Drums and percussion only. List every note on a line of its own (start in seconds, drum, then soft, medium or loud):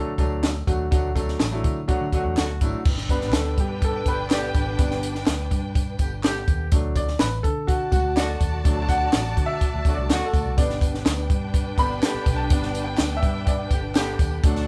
0.18 kick medium
0.18 closed hi-hat medium
0.18 tambourine medium
0.43 snare loud
0.43 clap medium
0.43 closed hi-hat medium
0.43 tambourine medium
0.67 kick medium
0.67 closed hi-hat medium
0.67 tambourine soft
0.92 kick loud
0.92 closed hi-hat medium
0.92 tambourine medium
1.16 kick medium
1.16 closed hi-hat medium
1.16 tambourine medium
1.28 snare soft
1.40 snare loud
1.40 clap medium
1.40 closed hi-hat medium
1.40 tambourine medium
1.64 kick medium
1.64 closed hi-hat medium
1.64 tambourine soft
1.89 kick medium
1.89 closed hi-hat medium
1.89 tambourine soft
2.12 kick medium
2.12 closed hi-hat medium
2.12 tambourine medium
2.37 snare loud
2.37 clap medium
2.37 closed hi-hat medium
2.37 tambourine medium
2.61 kick medium
2.61 closed hi-hat medium
2.61 tambourine medium
2.85 kick loud
2.85 crash loud
2.85 tambourine medium
2.97 snare soft
3.09 kick medium
3.09 closed hi-hat medium
3.09 tambourine medium
3.21 snare soft
3.32 snare loud
3.32 clap medium
3.32 closed hi-hat medium
3.32 tambourine loud
3.58 kick medium
3.58 closed hi-hat medium
3.82 kick medium
3.82 closed hi-hat medium
3.82 tambourine soft
4.06 kick medium
4.06 closed hi-hat medium
4.06 tambourine medium
4.30 snare loud
4.30 clap medium
4.30 closed hi-hat medium
4.30 tambourine medium
4.54 kick medium
4.54 closed hi-hat medium
4.54 tambourine soft
4.79 kick loud
4.79 closed hi-hat medium
4.79 tambourine medium
4.91 snare soft
5.03 closed hi-hat medium
5.03 tambourine medium
5.15 snare soft
5.26 snare loud
5.26 clap medium
5.26 closed hi-hat medium
5.26 tambourine medium
5.51 kick medium
5.51 closed hi-hat medium
5.51 tambourine soft
5.75 kick loud
5.75 closed hi-hat medium
5.75 tambourine soft
5.99 kick medium
5.99 closed hi-hat medium
5.99 tambourine medium
6.23 snare loud
6.23 clap medium
6.23 closed hi-hat medium
6.23 tambourine medium
6.47 kick medium
6.47 closed hi-hat medium
6.47 tambourine soft
6.72 kick loud
6.72 closed hi-hat loud
6.72 tambourine medium
6.96 kick medium
6.96 closed hi-hat medium
6.96 tambourine medium
7.08 snare soft
7.19 snare loud
7.19 clap medium
7.19 closed hi-hat medium
7.19 tambourine medium
7.44 kick medium
7.44 closed hi-hat medium
7.68 kick medium
7.68 closed hi-hat medium
7.68 tambourine soft
7.92 kick medium
7.92 closed hi-hat medium
7.92 tambourine medium
8.17 snare loud
8.17 clap medium
8.17 closed hi-hat medium
8.17 tambourine medium
8.41 kick medium
8.41 closed hi-hat medium
8.41 tambourine medium
8.65 kick loud
8.65 closed hi-hat medium
8.65 tambourine medium
8.89 kick medium
8.89 closed hi-hat medium
8.89 tambourine medium
9.13 snare loud
9.13 clap medium
9.13 closed hi-hat loud
9.13 tambourine loud
9.37 kick medium
9.37 closed hi-hat medium
9.61 kick loud
9.61 closed hi-hat medium
9.61 tambourine soft
9.85 kick medium
9.85 closed hi-hat medium
9.85 tambourine medium
10.10 snare loud
10.10 clap medium
10.10 closed hi-hat medium
10.10 tambourine medium
10.34 kick medium
10.34 closed hi-hat medium
10.34 tambourine medium
10.58 kick loud
10.58 closed hi-hat loud
10.58 tambourine medium
10.70 snare soft
10.81 kick loud
10.81 closed hi-hat medium
10.81 tambourine medium
10.94 snare soft
11.06 snare loud
11.06 clap medium
11.06 closed hi-hat medium
11.06 tambourine medium
11.30 kick medium
11.30 closed hi-hat medium
11.54 kick medium
11.54 closed hi-hat medium
11.54 tambourine soft
11.78 kick medium
11.78 closed hi-hat medium
11.78 tambourine medium
12.03 snare loud
12.03 clap medium
12.03 closed hi-hat medium
12.03 tambourine medium
12.26 kick loud
12.26 closed hi-hat medium
12.26 tambourine medium
12.50 kick loud
12.50 closed hi-hat loud
12.50 tambourine medium
12.62 snare soft
12.74 closed hi-hat medium
12.74 tambourine medium
12.97 snare loud
12.97 clap medium
12.97 closed hi-hat medium
12.97 tambourine medium
13.23 kick loud
13.23 closed hi-hat medium
13.47 kick loud
13.47 closed hi-hat medium
13.47 tambourine soft
13.71 kick medium
13.71 closed hi-hat medium
13.71 tambourine medium
13.95 snare loud
13.95 clap medium
13.95 closed hi-hat medium
13.95 tambourine medium
14.19 kick loud
14.19 closed hi-hat medium
14.19 tambourine medium
14.44 kick loud
14.44 closed hi-hat medium
14.44 tambourine medium
14.55 snare soft